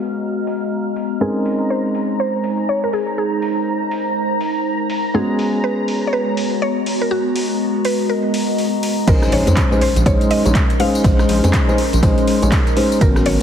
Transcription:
Already playing: G#3 B3 C#4 F#4 G#4 B4 D#5 A#5 F6
0.47 open hi-hat
0.96 open hi-hat
1.21 G#3 C4 C#4 D#4 G#4 A#4 C5 A#5
1.45 open hi-hat
1.70 C5
1.95 open hi-hat
2.20 C5
2.44 open hi-hat
2.69 C#5
2.84 A#4
2.93 G#4, open hi-hat
3.18 G#4
3.42 open hi-hat
3.91 open hi-hat
4.41 open hi-hat
4.90 open hi-hat
5.14 G#3 B3 C#4 F#4 G#4 C#5
5.39 open hi-hat
5.64 B4
5.88 open hi-hat
6.07 C#5
6.13 B4
6.37 open hi-hat
6.62 C#5
6.86 open hi-hat
7.01 A#4
7.11 F#4 D#5
7.36 open hi-hat
7.85 B4, open hi-hat
8.09 A#4
8.34 open hi-hat
8.58 open hi-hat
8.83 open hi-hat
9.07 A#1 G#3 C#4 D#4 A#4 C5 C6, kick, closed hi-hat, crash, ride, tambourine, impact
9.22 cross-stick, snare, tambourine
9.32 A#1 C#5, open hi-hat, ride
9.47 F2 G#3 C#4 D#4 C5, closed hi-hat, tambourine
9.57 kick, snare, clap, closed hi-hat, ride, tambourine
9.72 G#3 C#4 D#4 C5, tambourine
9.81 C5, open hi-hat, ride
9.96 A#1, closed hi-hat, tambourine
10.06 A#1 G#3 C#4 D#4 C5 C#5, kick, closed hi-hat, ride, tambourine
10.21 closed hi-hat, tambourine
10.31 D#5, open hi-hat, ride
10.45 A#1 G#3 C#4 D#4 C#5, closed hi-hat, tambourine
10.55 kick, snare, clap, closed hi-hat, ride, tambourine
10.70 closed hi-hat, ride, tambourine
10.80 G#3 C#4 D#4 C5 F5, open hi-hat, ride
10.95 tambourine
11.04 A#1 G#3 C#4 D#4 C5, kick, closed hi-hat, ride, tambourine
11.19 cross-stick, snare, tambourine
11.29 A#1, open hi-hat, ride
11.44 F2 G#3 C#4 D#4 C5, snare, closed hi-hat, tambourine
11.53 kick, snare, clap, closed hi-hat, ride, tambourine
11.68 G#3 C#4 D#4 C5, tambourine
11.78 open hi-hat, ride
11.93 A#1, closed hi-hat, tambourine
12.03 A#1 G#3 C#4 D#4 C5, kick, closed hi-hat, ride, tambourine
12.18 closed hi-hat, tambourine
12.27 open hi-hat, ride
12.42 A#1 G#3 C#4 D#4 C#5, closed hi-hat, tambourine
12.52 kick, snare, clap, closed hi-hat, ride, tambourine
12.67 closed hi-hat, tambourine
12.77 G#3 C#4 D#4 C5, open hi-hat
12.92 tambourine
13.01 G#1 F#3 B3 C#4 F#4 A#4 C#5, kick, closed hi-hat, ride, tambourine
13.16 cross-stick, snare, tambourine
13.26 G#1 C#5, open hi-hat, ride

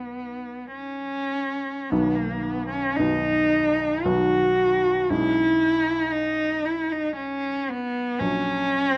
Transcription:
Already playing: B1 D#3 F#3 B3
0.72 C#4
1.90 B1 D#3 F#3 B3
2.15 A#3
2.43 B3
2.69 C#4
2.96 B1 D#3 F#3 B3 D#4
4.03 B1 D#3 F#3 B3 F#4
5.10 B1 G#3 C#4 E4
6.12 D#4
6.65 E4
6.92 D#4
7.16 C#4
7.70 B3
8.19 A#1 F#3 C#4

